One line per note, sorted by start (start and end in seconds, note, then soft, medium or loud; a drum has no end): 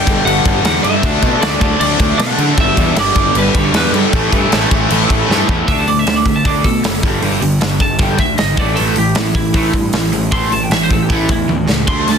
0.00 0.82 G2 loud
0.00 0.83 D3 loud
0.00 0.83 G3 loud
0.00 1.02 G3 medium
0.00 0.84 B3 loud
0.00 0.83 D4 loud
0.00 2.55 D4 medium
0.00 4.09 A4 medium
0.00 0.25 G5 loud
0.06 0.21 G1 loud
0.06 0.23 G2 medium
0.06 0.24 D3 medium
0.06 0.25 G3 loud
0.06 kick medium
0.06 crash medium
0.24 0.39 G1 loud
0.24 0.43 G2 loud
0.24 0.44 D3 loud
0.24 0.44 G3 loud
0.24 0.64 F#5 loud
0.24 crash medium
0.44 0.59 G1 medium
0.44 0.62 G2 medium
0.44 0.63 D3 loud
0.44 0.64 G3 loud
0.44 kick loud
0.44 crash medium
0.63 0.78 E2 loud
0.63 0.82 G2 loud
0.63 0.83 D3 loud
0.63 0.84 G3 loud
0.63 0.83 F#5 medium
0.63 snare loud
0.63 crash medium
0.76 snare soft
0.83 1.02 G2 medium
0.83 0.98 G2 medium
0.83 1.01 D3 medium
0.83 1.03 G3 medium
0.83 1.03 B3 medium
0.83 1.05 D4 medium
0.83 1.30 E5 loud
0.83 crash medium
1.03 1.16 D2 loud
1.03 1.20 D3 loud
1.03 2.37 F#3 loud
1.03 1.21 A3 loud
1.03 1.22 D4 loud
1.03 2.57 E5 medium
1.03 kick loud
1.03 crash medium
1.22 1.36 B2 medium
1.22 1.41 D3 medium
1.22 1.41 A3 loud
1.22 1.42 D4 medium
1.22 kick medium
1.22 crash medium
1.30 1.42 D5 loud
1.42 1.56 D2 medium
1.42 1.59 D3 loud
1.42 1.60 A3 loud
1.42 1.61 D4 loud
1.42 1.79 D5 loud
1.42 snare loud
1.42 crash medium
1.53 snare soft
1.60 1.74 D2 medium
1.60 1.79 D3 medium
1.60 1.80 A3 loud
1.60 1.80 D4 loud
1.60 kick loud
1.60 crash medium
1.80 1.94 D2 loud
1.80 1.99 D3 loud
1.80 1.99 A3 loud
1.80 2.00 D4 loud
1.80 2.20 D5 loud
1.80 crash medium
1.99 2.13 D2 medium
1.99 2.17 D3 loud
1.99 2.18 A3 loud
1.99 2.19 D4 loud
1.99 kick loud
1.99 crash medium
2.18 2.33 B2 loud
2.18 2.37 D3 loud
2.18 2.38 A3 loud
2.18 2.39 D4 loud
2.18 2.45 F#5 medium
2.18 snare loud
2.18 crash loud
2.38 2.52 D3 loud
2.38 2.56 D3 loud
2.38 2.57 F#3 medium
2.38 2.57 A3 medium
2.38 2.57 D4 loud
2.38 crash medium
2.56 2.71 G1 loud
2.56 2.76 G2 loud
2.56 2.76 D3 loud
2.56 4.10 G3 medium
2.56 2.77 G3 loud
2.56 3.92 B3 loud
2.56 4.10 D4 medium
2.56 3.91 D4 loud
2.56 2.99 E5 loud
2.56 kick loud
2.56 crash medium
2.77 2.91 E2 loud
2.77 2.94 G2 medium
2.77 2.96 D3 loud
2.77 2.96 G3 loud
2.77 kick medium
2.77 crash medium
2.95 3.10 G1 medium
2.95 3.14 G2 loud
2.95 3.15 D3 loud
2.95 3.16 G3 loud
2.95 3.37 D5 loud
2.95 snare loud
2.95 crash loud
3.15 3.29 G1 medium
3.15 3.34 G2 medium
3.15 3.34 D3 loud
3.15 3.35 G3 medium
3.15 kick medium
3.15 crash medium
3.34 3.48 G1 medium
3.34 3.53 G2 loud
3.34 3.54 D3 loud
3.34 3.55 G3 loud
3.34 3.55 B4 medium
3.34 crash medium
3.54 3.68 G1 medium
3.54 3.72 G2 medium
3.54 3.73 D3 loud
3.54 3.74 G3 loud
3.54 3.74 C#5 medium
3.54 kick medium
3.54 crash medium
3.73 3.86 E2 medium
3.73 3.92 G2 medium
3.73 3.93 D3 medium
3.73 3.93 G3 loud
3.73 3.93 B4 medium
3.73 snare loud
3.73 crash medium
3.84 snare soft
3.92 4.06 G2 loud
3.92 4.11 G2 loud
3.92 4.12 D3 loud
3.92 4.12 G3 loud
3.92 4.12 B3 medium
3.92 4.11 D4 medium
3.92 5.28 A4 medium
3.92 crash medium
4.12 4.26 A1 loud
4.12 4.31 A2 medium
4.12 4.32 E3 medium
4.12 5.66 A3 medium
4.12 4.33 A3 loud
4.12 5.46 C#4 loud
4.12 5.65 E4 medium
4.12 5.46 E4 loud
4.12 5.66 B4 medium
4.12 kick loud
4.12 crash medium
4.32 4.46 G2 loud
4.32 4.50 A2 medium
4.32 4.51 E3 medium
4.32 4.52 A3 loud
4.32 kick medium
4.32 crash medium
4.51 4.65 A1 medium
4.51 4.70 A2 loud
4.51 4.71 E3 loud
4.51 4.72 A3 loud
4.51 snare loud
4.51 crash medium
4.71 4.85 A1 medium
4.71 4.89 A2 medium
4.71 4.89 E3 medium
4.71 4.90 A3 loud
4.71 kick loud
4.71 crash medium
4.90 5.04 A1 medium
4.90 5.09 A2 loud
4.90 5.10 E3 loud
4.90 5.11 A3 loud
4.90 crash medium
5.10 5.23 A1 medium
5.10 5.28 A2 loud
5.10 5.29 E3 loud
5.10 5.30 A3 loud
5.10 kick medium
5.10 crash medium
5.29 5.43 G2 medium
5.29 5.48 A2 medium
5.29 5.48 E3 loud
5.29 5.49 A3 medium
5.29 snare medium
5.47 5.62 E2 medium
5.47 5.66 A2 medium
5.47 5.67 E3 loud
5.47 5.67 A3 medium
5.47 5.66 C#4 medium
5.47 5.66 E4 medium
5.47 kick loud
5.68 5.86 D2 loud
5.68 5.86 D3 medium
5.68 5.86 A3 medium
5.68 5.86 D4 medium
5.68 5.77 E5 loud
5.68 kick loud
5.68 open hi-hat medium
5.79 5.87 A5 medium
5.87 6.05 D2 medium
5.87 6.05 D3 medium
5.87 6.05 A3 loud
5.87 5.99 D5 medium
5.87 open hi-hat medium
5.99 6.07 E5 medium
6.06 6.24 D2 medium
6.06 6.24 D3 medium
6.06 6.24 A3 medium
6.06 6.16 A5 medium
6.06 snare loud
6.06 open hi-hat medium
6.16 6.26 D5 medium
6.26 6.44 D2 medium
6.26 6.43 D3 medium
6.26 6.43 A3 medium
6.26 6.35 E5 medium
6.26 kick medium
6.26 open hi-hat medium
6.36 6.45 A5 medium
6.45 6.63 D2 loud
6.45 6.64 D3 medium
6.45 6.64 A3 medium
6.45 6.64 D4 loud
6.45 6.64 D5 medium
6.45 kick loud
6.45 open hi-hat medium
6.64 6.82 B2 medium
6.64 6.83 D3 medium
6.64 6.83 A3 medium
6.64 7.02 A4 loud
6.64 kick medium
6.64 open hi-hat medium
6.83 7.02 F#1 medium
6.83 7.01 D3 medium
6.83 7.01 A3 medium
6.83 snare loud
6.83 open hi-hat medium
7.03 7.21 G1 medium
7.03 7.21 G2 medium
7.03 7.21 D3 loud
7.03 7.22 G3 loud
7.03 kick loud
7.03 open hi-hat medium
7.22 7.41 G1 loud
7.22 7.40 G2 loud
7.22 7.40 D3 medium
7.22 7.41 G3 medium
7.22 open hi-hat medium
7.41 7.60 G1 medium
7.41 7.59 G2 medium
7.41 7.59 D3 medium
7.41 open hi-hat medium
7.61 7.80 G1 medium
7.61 7.78 G2 medium
7.61 7.79 D3 medium
7.61 snare loud
7.61 open hi-hat medium
7.80 7.99 G1 medium
7.80 7.98 G2 medium
7.80 7.98 D3 medium
7.80 8.01 A5 medium
7.80 kick medium
7.80 snare soft
7.80 open hi-hat medium
7.99 8.18 G1 medium
7.99 8.17 G2 medium
7.99 8.18 D3 loud
7.99 8.19 G3 medium
7.99 8.20 G5 loud
7.99 kick loud
7.99 open hi-hat medium
8.18 8.38 D2 medium
8.18 8.36 G2 medium
8.18 8.37 D3 medium
8.18 8.37 E5 medium
8.18 kick loud
8.18 open hi-hat medium
8.38 8.57 G#1 loud
8.38 8.56 G2 medium
8.38 8.56 D3 medium
8.38 8.57 D#5 medium
8.38 snare loud
8.38 open hi-hat medium
8.56 8.76 A1 medium
8.56 8.74 A2 loud
8.56 8.75 E3 loud
8.56 8.75 A3 loud
8.56 8.78 D5 medium
8.56 kick loud
8.56 open hi-hat medium
8.75 8.94 A2 medium
8.75 8.94 E3 medium
8.75 8.95 A3 loud
8.75 8.96 A4 loud
8.75 open hi-hat medium
8.80 8.97 A1 medium
8.95 9.16 A1 loud
8.95 9.14 A2 medium
8.95 9.13 E3 medium
8.95 9.17 G4 medium
8.95 open hi-hat medium
9.15 9.34 A1 medium
9.15 9.33 A2 medium
9.15 9.33 E3 medium
9.15 9.34 E4 medium
9.15 snare loud
9.15 open hi-hat medium
9.34 9.54 A1 medium
9.34 9.52 A2 medium
9.34 9.53 E3 medium
9.34 10.11 E4 loud
9.34 kick loud
9.34 open hi-hat medium
9.53 9.73 A1 medium
9.53 9.73 A2 medium
9.53 9.73 E3 medium
9.53 9.73 A3 loud
9.53 kick loud
9.53 open hi-hat medium
9.73 9.93 G2 medium
9.73 9.92 A2 medium
9.73 9.92 E3 medium
9.73 kick medium
9.73 open hi-hat medium
9.93 10.12 A1 loud
9.93 10.11 A2 medium
9.93 10.11 E3 medium
9.93 snare loud
9.93 open hi-hat medium
10.12 10.32 A1 medium
10.12 10.30 A2 medium
10.12 10.31 E3 medium
10.12 open hi-hat medium
10.32 10.50 A1 medium
10.32 10.51 A2 medium
10.32 10.51 E3 medium
10.32 10.52 A3 loud
10.32 10.52 C6 loud
10.32 kick loud
10.32 open hi-hat medium
10.51 10.70 A1 loud
10.51 10.70 A2 medium
10.51 10.70 E3 medium
10.51 10.63 A5 loud
10.51 open hi-hat medium
10.63 10.72 G5 medium
10.70 10.89 A1 medium
10.70 10.90 A2 medium
10.70 10.90 E3 medium
10.70 10.81 E5 medium
10.70 snare loud
10.70 open hi-hat medium
10.83 10.92 C5 loud
10.90 11.09 A1 medium
10.90 11.09 A2 medium
10.90 11.09 E3 medium
10.90 11.02 A4 medium
10.90 kick medium
10.90 open hi-hat medium
11.02 11.11 G4 loud
11.10 11.29 A1 loud
11.10 11.29 A2 medium
11.10 11.30 E3 medium
11.10 11.30 A3 loud
11.10 11.30 E4 loud
11.10 kick loud
11.10 open hi-hat medium
11.29 11.48 E2 medium
11.29 11.48 A2 medium
11.29 11.48 E3 medium
11.29 11.50 E4 loud
11.29 kick medium
11.29 open hi-hat medium
11.49 11.67 D2 medium
11.49 11.68 A2 medium
11.49 11.68 E3 medium
11.49 high tom medium
11.68 11.87 C#2 medium
11.68 11.87 A2 medium
11.68 11.87 E3 medium
11.68 snare loud
11.86 12.06 D2 loud
11.86 12.07 D3 medium
11.86 12.18 D4 medium
11.86 12.18 A4 medium
11.86 12.18 E5 medium
11.86 12.07 C6 loud
11.86 kick loud
11.86 crash medium
11.91 12.08 A3 medium
11.91 12.08 D4 medium
12.08 12.18 D2 loud
12.08 12.18 D3 medium
12.08 12.18 A3 medium
12.08 12.18 A5 loud
12.08 snare soft
12.08 open hi-hat medium